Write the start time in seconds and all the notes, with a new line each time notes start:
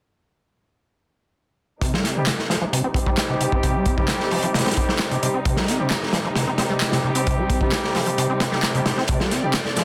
1.81 C3 G3 D#4, kick, closed hi-hat
1.93 G3, snare
2.04 C4, snare, closed hi-hat
2.16 C3 G3 C4 D#4 G4
2.26 D#3, snare, clap, closed hi-hat
2.39 snare
2.50 F3, snare, closed hi-hat
2.62 F3
2.73 C3, closed hi-hat
2.84 C4
2.94 G3 C4 D#4 G4, kick, closed hi-hat
3.06 G3, kick
3.17 snare, clap, closed hi-hat
3.29 C3
3.41 C3, closed hi-hat
3.52 C4, kick
3.63 C3, kick, closed hi-hat
3.75 G3
3.86 C4, kick, closed hi-hat
3.97 C3 G3 C4 D#4 G4, kick
4.08 D#3, snare, clap, closed hi-hat
4.20 snare
4.31 F3, open hi-hat
4.42 F3, closed hi-hat
4.54 C3, snare, closed hi-hat
4.58 snare, closed hi-hat
4.66 C4, snare, closed hi-hat
4.71 snare, closed hi-hat
4.77 G3 C4 D#4 G4, kick, closed hi-hat
4.89 G3, snare
4.99 snare, clap, closed hi-hat
5.11 C3 G3 C4 D#4 G4, closed hi-hat
5.22 C3 G3 C4 D#4 G4, closed hi-hat
5.34 C4
5.45 C3, kick, closed hi-hat
5.57 G3, snare
5.68 C4, snare, closed hi-hat
5.79 C3 G3 C4 D#4 G4
5.90 D#3, snare, clap, closed hi-hat
6.03 snare
6.13 F3, snare, closed hi-hat
6.25 F3
6.36 C3, snare, closed hi-hat
6.47 C4
6.58 G3 C4 D#4 G4, snare, closed hi-hat
6.70 G3
6.81 snare, clap, closed hi-hat
6.92 C3, snare, closed hi-hat
7.04 C3
7.15 C4, closed hi-hat
7.27 C3, kick, closed hi-hat
7.38 G3
7.49 C4, kick, closed hi-hat
7.61 C3 G3 C4 D#4 G4, kick
7.72 D#3, snare, clap, closed hi-hat
7.84 snare
7.95 F3, snare, open hi-hat
8.06 F3, closed hi-hat
8.18 C3, closed hi-hat
8.30 C4
8.40 G3 C4 D#4 G4, snare, closed hi-hat
8.52 G3, snare
8.63 snare, clap, closed hi-hat
8.74 C3 G3 C4 D#4 G4, closed hi-hat
8.86 C3 G3 C4 D#4 G4, snare, closed hi-hat
8.98 C4, snare
9.08 C3 A3 D5, kick, closed hi-hat
9.20 G3, snare
9.31 C4, snare, closed hi-hat
9.43 C3 G3 C4 D#4 G4
9.54 D#3, snare, clap, closed hi-hat
9.65 snare
9.76 F3, snare, closed hi-hat